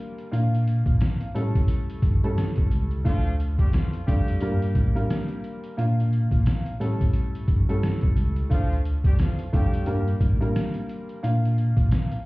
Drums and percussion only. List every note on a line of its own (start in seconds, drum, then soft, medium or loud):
0.18 closed hi-hat medium
0.33 closed hi-hat loud
0.55 closed hi-hat medium
0.67 closed hi-hat medium
0.86 kick loud
0.86 closed hi-hat medium
1.01 cross-stick medium
1.01 snare loud
1.01 closed hi-hat loud
1.21 closed hi-hat medium
1.36 closed hi-hat medium
1.55 kick medium
1.55 closed hi-hat medium
1.68 closed hi-hat loud
1.90 closed hi-hat medium
2.02 kick loud
2.02 closed hi-hat medium
2.24 closed hi-hat soft
2.38 cross-stick loud
2.38 snare loud
2.38 closed hi-hat loud
2.56 kick loud
2.56 closed hi-hat medium
2.71 closed hi-hat medium
2.91 closed hi-hat medium
3.05 kick loud
3.05 closed hi-hat loud
3.27 closed hi-hat soft
3.40 closed hi-hat medium
3.58 kick loud
3.58 closed hi-hat medium
3.73 cross-stick medium
3.73 snare loud
3.73 closed hi-hat loud
3.93 closed hi-hat medium
4.08 kick loud
4.08 closed hi-hat medium
4.28 closed hi-hat medium
4.41 closed hi-hat loud
4.62 closed hi-hat medium
4.75 kick loud
4.75 closed hi-hat medium
4.97 closed hi-hat soft
5.10 cross-stick loud
5.10 snare loud
5.10 closed hi-hat loud
5.28 closed hi-hat medium
5.44 closed hi-hat medium
5.64 closed hi-hat medium
5.79 closed hi-hat loud
6.00 closed hi-hat soft
6.13 closed hi-hat medium
6.31 kick loud
6.31 closed hi-hat medium
6.46 cross-stick medium
6.46 snare loud
6.46 closed hi-hat loud
6.66 closed hi-hat medium
6.81 snare soft
6.81 closed hi-hat medium
7.01 kick medium
7.01 closed hi-hat medium
7.13 closed hi-hat loud
7.35 closed hi-hat medium
7.48 kick loud
7.48 closed hi-hat medium
7.69 closed hi-hat soft
7.83 cross-stick loud
7.83 snare loud
7.83 closed hi-hat loud
8.01 kick loud
8.01 closed hi-hat medium
8.17 closed hi-hat medium
8.36 closed hi-hat medium
8.51 kick loud
8.51 closed hi-hat loud
8.73 closed hi-hat soft
8.85 closed hi-hat medium
9.04 kick loud
9.04 closed hi-hat medium
9.19 cross-stick medium
9.19 snare loud
9.19 closed hi-hat loud
9.39 closed hi-hat medium
9.53 kick loud
9.53 closed hi-hat medium
9.74 closed hi-hat medium
9.86 closed hi-hat medium
10.08 closed hi-hat medium
10.20 kick loud
10.20 closed hi-hat medium
10.42 closed hi-hat soft
10.56 cross-stick loud
10.56 snare loud
10.56 closed hi-hat loud
10.74 closed hi-hat medium
10.89 closed hi-hat medium
11.09 closed hi-hat medium
11.24 closed hi-hat loud
11.45 closed hi-hat soft
11.58 closed hi-hat medium
11.77 kick loud
11.77 closed hi-hat medium
11.91 cross-stick medium
11.91 snare loud
11.91 closed hi-hat loud
12.12 closed hi-hat medium